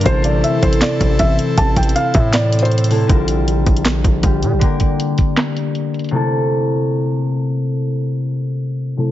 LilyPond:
<<
  \new Staff \with { instrumentName = "Felt piano" } { \time 4/4 \key a \phrygian \tempo 4 = 158 c''8 d''8 e''8 c''8 d''4 e''8 r8 | a''8 g''8 f''8 e''8 d''8. c''4~ c''16 | r1 | r1 |
r1 | r1 | }
  \new Staff \with { instrumentName = "Harp" } { \time 4/4 \key a \phrygian <c a e' a'>1~ | <c a e' a'>2.~ <c a e' a'>8 <c a e' a'>8 | <d g f' bes'>2. <d g f' g'>4 | <d bes g' bes'>1 |
<c a e' a'>1~ | <c a e' a'>2.~ <c a e' a'>8 <c a e' a'>8 | }
  \new Staff \with { instrumentName = "Analog synth pad" } { \time 4/4 \key a \phrygian <e c' a'>1~ | <e c' a'>1 | r1 | r1 |
r1 | r1 | }
  \new Staff \with { instrumentName = "808-style bass" } { \clef bass \time 4/4 \key a \phrygian a,,4 r8 a,,8 r8 a,,8 a,,8 r8 | a,,8 a,,8 r8 a,2~ a,8 | bes,,4. bes,,4 bes,,8 bes,,8 bes,16 bes,,16 | r1 |
r1 | r1 | }
  \new DrumStaff \with { instrumentName = "Drums" } \drummode { \time 4/4 <hh bd>8 hh8 hh8 <hh bd>16 hh16 <hc hh sn>8 <hh bd>8 <hh bd>8 hh8 | \tuplet 3/2 { <hh bd>16 r16 r16 <hh bd>16 hh16 hh16 } hh8 <hh bd>8 \tuplet 3/2 { <hc hh sn>16 r16 r16 hh16 hh16 hh16 hh16 hh16 hh16 hho16 r16 r16 } | <hh bd>8 hh8 hh8 <hh bd>16 hh16 <hc hh sn>8 <hh bd>8 <hh bd>8 hh8 | <hh bd>8 <hh bd>8 hh8 <hh bd>8 <hc hh sn>8 hh8 hh8 hh32 hh32 hh32 hh32 |
r4 r4 r4 r4 | r4 r4 r4 r4 | }
>>